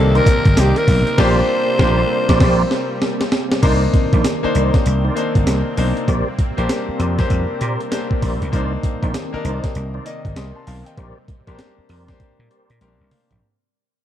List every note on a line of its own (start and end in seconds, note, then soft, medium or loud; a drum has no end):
0.00 0.19 C2 medium
0.00 3.59 C3 medium
0.00 1.16 D#3 medium
0.00 0.56 A#3 medium
0.00 3.59 A#3 medium
0.00 3.59 C4 medium
0.00 1.18 D4 medium
0.00 0.57 D#4 medium
0.00 0.57 G4 medium
0.00 0.18 A4 loud
0.00 1.19 C5 medium
0.15 0.28 D#4 medium
0.15 0.28 A#4 medium
0.15 0.60 A#4 loud
0.15 0.28 C5 medium
0.15 0.29 D5 medium
0.15 closed hi-hat soft
0.26 kick loud
0.26 closed hi-hat medium
0.26 tambourine medium
0.45 0.54 G1 medium
0.45 kick medium
0.45 closed hi-hat medium
0.56 0.72 C2 loud
0.56 1.11 A#3 medium
0.56 1.11 D#4 medium
0.56 1.11 G4 medium
0.56 0.79 G4 loud
0.56 1.11 D5 medium
0.56 1.11 D#5 medium
0.56 snare loud
0.56 closed hi-hat medium
0.56 tambourine loud
0.76 1.18 A#4 loud
0.76 closed hi-hat medium
0.88 1.02 B1 medium
0.88 kick loud
0.88 open hi-hat medium
0.88 tambourine medium
1.07 closed hi-hat soft
1.18 1.40 A#1 loud
1.18 3.60 G3 medium
1.18 1.40 A#3 loud
1.18 1.40 D4 loud
1.18 1.40 F4 loud
1.18 1.40 G4 loud
1.18 1.41 G4 loud
1.18 1.40 A#4 loud
1.18 1.40 C5 loud
1.18 1.41 C5 loud
1.18 3.29 C5 loud
1.18 1.40 D5 loud
1.18 kick loud
1.18 snare loud
1.18 crash medium
1.79 2.02 A#1 loud
1.79 2.01 A#3 loud
1.79 2.01 D4 loud
1.79 2.01 F4 loud
1.79 2.01 G4 loud
1.79 2.01 A#4 loud
1.79 2.01 C5 loud
1.79 2.02 C5 medium
1.79 2.01 D5 loud
1.79 kick loud
1.79 snare loud
2.29 2.39 A#1 loud
2.29 2.39 G4 loud
2.29 2.39 A#4 loud
2.29 2.39 C5 loud
2.29 2.39 D5 loud
2.29 kick loud
2.29 snare loud
2.40 2.63 A#1 loud
2.40 2.62 G4 loud
2.40 2.63 A#4 loud
2.40 2.63 C5 loud
2.40 2.63 D5 loud
2.40 kick loud
2.40 snare loud
2.40 crash medium
2.71 snare medium
3.02 snare medium
3.21 snare medium
3.32 snare loud
3.52 snare loud
3.62 3.85 C2 loud
3.62 8.48 C3 medium
3.62 6.05 D#3 medium
3.62 4.28 A#3 medium
3.62 13.38 A#3 medium
3.62 13.38 C4 medium
3.62 4.28 D4 medium
3.62 3.83 D#4 loud
3.62 4.28 D#4 medium
3.62 3.83 A#4 medium
3.62 3.83 C5 loud
3.62 4.28 C5 loud
3.62 3.83 D5 loud
3.62 kick loud
3.62 closed hi-hat medium
3.62 crash loud
3.62 tambourine medium
3.94 kick loud
3.94 closed hi-hat medium
4.12 4.21 A#1 loud
4.12 4.26 D#4 medium
4.12 4.26 A#4 medium
4.12 4.26 C5 medium
4.12 4.26 D5 medium
4.12 kick loud
4.12 closed hi-hat medium
4.24 snare loud
4.24 closed hi-hat medium
4.24 tambourine medium
4.43 5.07 A#3 loud
4.43 5.07 D4 medium
4.43 5.07 D#4 medium
4.43 5.07 C5 loud
4.43 muted slap bass stroke soft
4.54 4.69 C2 medium
4.54 4.75 D#4 medium
4.54 4.75 A#4 medium
4.54 4.75 C5 medium
4.54 4.75 D5 medium
4.54 closed hi-hat medium
4.54 tambourine medium
4.74 kick loud
4.74 snare medium
4.74 closed hi-hat medium
4.86 5.08 C2 medium
4.86 closed hi-hat medium
4.86 tambourine medium
5.04 5.18 D#4 medium
5.04 5.18 A#4 medium
5.04 5.18 C5 medium
5.04 5.18 D5 medium
5.16 5.70 A#3 medium
5.16 5.70 D4 medium
5.16 5.70 D#4 medium
5.16 5.70 C5 loud
5.16 closed hi-hat medium
5.16 tambourine medium
5.35 5.44 G1 medium
5.35 kick loud
5.35 closed hi-hat medium
5.47 5.61 C2 loud
5.47 snare loud
5.47 closed hi-hat medium
5.47 tambourine loud
5.77 5.92 B1 medium
5.77 6.08 A#3 medium
5.77 6.08 D4 medium
5.77 6.08 D#4 medium
5.77 6.08 C5 loud
5.77 open hi-hat medium
5.77 tambourine medium
5.97 closed hi-hat medium
6.08 6.22 A#1 loud
6.08 8.50 G3 medium
6.08 6.28 G4 loud
6.08 6.28 A#4 medium
6.08 6.28 C5 medium
6.08 6.28 D5 loud
6.08 kick loud
6.08 closed hi-hat medium
6.08 tambourine medium
6.39 kick loud
6.39 closed hi-hat medium
6.57 6.66 A#1 loud
6.57 7.06 A#3 loud
6.57 7.07 D4 medium
6.57 6.71 G4 medium
6.57 7.07 G4 medium
6.57 6.71 A#4 medium
6.57 6.71 C5 medium
6.57 7.07 C5 loud
6.57 6.71 D5 medium
6.57 closed hi-hat medium
6.69 snare loud
6.69 closed hi-hat medium
6.69 tambourine medium
6.89 muted slap bass stroke soft
6.99 7.22 F2 loud
6.99 7.20 G4 medium
6.99 7.20 A#4 medium
6.99 7.20 C5 medium
6.99 7.20 D5 medium
6.99 closed hi-hat medium
6.99 tambourine medium
7.18 7.82 A#3 medium
7.18 7.24 C4 medium
7.18 7.83 G4 medium
7.18 7.83 C5 loud
7.18 kick loud
7.18 snare medium
7.18 closed hi-hat medium
7.25 7.86 D4 medium
7.30 7.44 F2 loud
7.30 kick loud
7.30 closed hi-hat medium
7.30 tambourine medium
7.61 7.75 A#2 medium
7.61 7.81 G4 medium
7.61 7.81 A#4 medium
7.61 7.81 C5 medium
7.61 7.81 D5 medium
7.61 closed hi-hat medium
7.61 tambourine medium
7.80 closed hi-hat medium
7.91 8.45 A#3 medium
7.91 8.45 D4 medium
7.91 8.46 G4 medium
7.91 8.46 C5 loud
7.91 snare loud
7.91 closed hi-hat medium
7.91 tambourine loud
8.11 kick loud
8.22 8.37 A#1 loud
8.22 8.42 G4 medium
8.22 8.42 A#4 medium
8.22 8.42 C5 medium
8.22 8.43 D5 medium
8.22 kick medium
8.22 open hi-hat medium
8.22 tambourine medium
8.42 8.50 C#2 medium
8.42 closed hi-hat soft
8.52 8.75 C2 loud
8.52 13.38 C3 medium
8.52 10.95 D#3 medium
8.52 9.18 A#3 medium
8.52 9.18 D4 medium
8.52 8.73 D#4 loud
8.52 9.18 D#4 medium
8.52 8.73 A#4 medium
8.52 8.73 C5 loud
8.52 9.18 C5 loud
8.52 8.73 D5 loud
8.52 kick loud
8.52 closed hi-hat medium
8.52 tambourine medium
8.83 kick loud
8.83 closed hi-hat medium
9.02 9.11 A#1 loud
9.02 9.16 D#4 medium
9.02 9.16 A#4 medium
9.02 9.16 C5 medium
9.02 9.16 D5 medium
9.02 kick loud
9.02 closed hi-hat medium
9.14 snare loud
9.14 closed hi-hat medium
9.14 tambourine loud
9.33 9.96 A#3 loud
9.33 9.97 D4 medium
9.33 9.97 D#4 medium
9.33 9.97 A#4 loud
9.33 muted slap bass stroke soft
9.44 9.59 C2 loud
9.44 9.65 D#4 medium
9.44 9.65 A#4 medium
9.44 9.65 C5 medium
9.44 9.65 D5 medium
9.44 closed hi-hat medium
9.44 tambourine medium
9.64 kick loud
9.64 snare medium
9.64 closed hi-hat medium
9.75 9.98 C2 loud
9.75 closed hi-hat medium
9.75 tambourine medium
9.94 10.08 D#4 medium
9.94 10.08 A#4 medium
9.94 10.08 C5 medium
9.94 10.08 D5 medium
10.05 10.59 A#3 medium
10.05 10.60 D#4 medium
10.05 10.60 D5 medium
10.05 10.37 D#5 loud
10.05 closed hi-hat medium
10.05 tambourine medium
10.25 10.33 G1 medium
10.25 kick medium
10.25 closed hi-hat medium
10.36 10.51 C2 medium
10.36 10.54 C6 medium
10.36 10.55 D#6 medium
10.36 snare loud
10.36 closed hi-hat medium
10.36 tambourine loud
10.55 10.65 A5 medium
10.55 10.66 C6 medium
10.67 10.81 B1 medium
10.67 10.85 F5 medium
10.67 10.85 A5 medium
10.67 open hi-hat medium
10.67 tambourine medium
10.86 11.16 D#5 medium
10.86 11.15 G5 medium
10.86 closed hi-hat medium
10.97 11.12 A#1 loud
10.97 13.40 G3 medium
10.97 11.18 G4 loud
10.97 11.18 A#4 medium
10.97 11.18 C5 medium
10.97 11.18 D5 loud
10.97 kick loud
10.97 closed hi-hat medium
11.28 kick loud
11.28 closed hi-hat medium
11.47 11.56 A#1 medium
11.47 11.96 A#3 medium
11.47 11.96 D4 medium
11.47 11.61 G4 medium
11.47 11.97 G4 medium
11.47 11.61 A#4 medium
11.47 11.53 A#4 medium
11.47 11.61 C5 medium
11.47 11.61 D5 medium
11.47 kick loud
11.47 closed hi-hat medium
11.54 12.00 C5 medium
11.59 snare loud
11.59 closed hi-hat medium
11.78 muted slap bass stroke soft
11.89 12.12 F2 medium
11.89 12.10 G4 medium
11.89 12.10 A#4 medium
11.89 12.10 C5 medium
11.89 12.10 D5 medium
11.89 open hi-hat medium
12.08 12.72 A#3 medium
12.08 12.72 D4 medium
12.08 12.72 G4 medium
12.08 12.72 C5 loud
12.08 kick loud
12.08 snare medium
12.08 closed hi-hat medium
12.20 kick medium
12.20 closed hi-hat medium
12.39 12.48 A#2 loud
12.50 12.71 G4 medium
12.50 12.71 A#4 medium
12.50 12.71 C5 medium
12.50 12.71 D5 medium
12.50 closed hi-hat medium
12.70 12.78 A#2 medium
12.70 closed hi-hat medium
12.81 12.95 A#1 loud
12.81 13.35 A#3 medium
12.81 12.89 C4 medium
12.81 13.36 G4 medium
12.81 13.36 A#4 loud
12.81 13.10 C6 medium
12.81 closed hi-hat medium
12.81 high tom medium
12.88 13.38 D4 medium
13.01 13.09 C2 medium
13.11 13.40 F5 medium
13.11 mid tom loud
13.11 open hi-hat medium
13.31 13.40 A#1 medium
13.31 closed hi-hat medium
13.31 floor tom medium